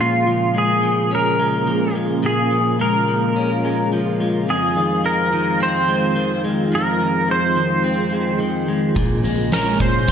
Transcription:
Already playing: F3 G#3 C#4
0.00 A#2 C#3 G#3 A#3 F4
0.27 F3
0.54 G#3 G#4
0.83 F3
1.11 C#4 A#4
1.39 G#3
1.67 F3
1.95 G#3
2.23 A#2 G#4
2.51 F3
2.79 G#3 A#4
3.08 F3
3.36 C#4
3.65 G#3
3.93 F3
4.20 G#3
4.49 F2 D#3 G#3 C4 G#4
4.77 D#3
5.04 G#3 A#4
5.33 D#3
5.60 C4 C5
5.88 G#3
6.16 D#3
6.44 G#3
6.73 F2 A#4
7.01 D#3
7.28 G#3 C5
7.56 D#3
7.84 C4
8.12 G#3
8.40 D#3
8.68 G#3
8.95 A#1 A#2 C#3 A#3 F4, kick, closed hi-hat
9.24 A#1 G#3, closed hi-hat
9.52 A#1 C#4 A#4, snare, closed hi-hat
9.79 A#2 G#3 C5, kick, closed hi-hat
10.08 A#1, kick, closed hi-hat

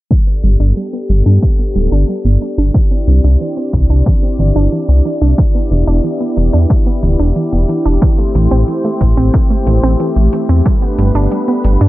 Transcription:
0.11 G3 B3 D4 G4 A4 D5, kick
0.27 B3
0.44 G1 G3, closed hi-hat
0.60 G1 D4
0.77 G3
0.93 B3
1.09 G1 G3, closed hi-hat
1.26 G2 D4
1.42 G3, kick
1.59 B3
1.75 D1 G3, closed hi-hat
1.92 G1 D4
2.08 G3, closed hi-hat
2.25 G1 B3
2.41 G3, closed hi-hat
2.58 G1 D4
2.74 E3 C4 E4 G4, kick
2.91 C4
3.07 C2 E3, closed hi-hat
3.24 C2 D4
3.40 E3, closed hi-hat
3.57 C4
3.73 C2 E3, kick, closed hi-hat
3.90 C2 D4, closed hi-hat
4.06 E3, kick
4.23 C4
4.39 G1 E3, closed hi-hat
4.56 G1 D4, closed hi-hat
4.72 E3, closed hi-hat
4.88 C2 C4, closed hi-hat
5.05 E3, closed hi-hat
5.22 C2 D4, closed hi-hat
5.38 E3 B3, kick, closed hi-hat
5.55 B3, closed hi-hat
5.71 E1 E3, closed hi-hat
5.87 E1 D4, closed hi-hat
6.04 E3, closed hi-hat
6.21 B3, closed hi-hat
6.37 E1 E3, closed hi-hat
6.53 E2 D4, closed hi-hat
6.70 E3, kick, closed hi-hat
6.86 B3, closed hi-hat
7.03 D1 E3, closed hi-hat
7.19 E1 D4, closed hi-hat
7.36 E3, closed hi-hat
7.52 E1 B3, closed hi-hat
7.69 E3, closed hi-hat
7.85 E1 D4, closed hi-hat
8.02 E3 A3 C4 C5, kick, closed hi-hat
8.18 A3, closed hi-hat
8.35 A1 E3, closed hi-hat
8.51 A1 C4, closed hi-hat
8.68 E3, closed hi-hat
8.84 A3, closed hi-hat
9.01 A1 E3, kick, closed hi-hat
9.17 A1 C4, closed hi-hat
9.34 E3, kick, closed hi-hat
9.50 A3, closed hi-hat
9.67 A1 E3, closed hi-hat
9.83 A1 C4, closed hi-hat
10.00 E3, closed hi-hat
10.16 A1 A3, closed hi-hat
10.33 E3, closed hi-hat
10.49 E2 C4, closed hi-hat
10.65 G3 B3 D4 B4, kick, closed hi-hat
10.82 B3, closed hi-hat
10.98 G1 G3, closed hi-hat
11.15 G1 D4, closed hi-hat
11.31 G3, closed hi-hat
11.48 B3, closed hi-hat
11.64 G1 G3, closed hi-hat
11.81 G2 D4, closed hi-hat

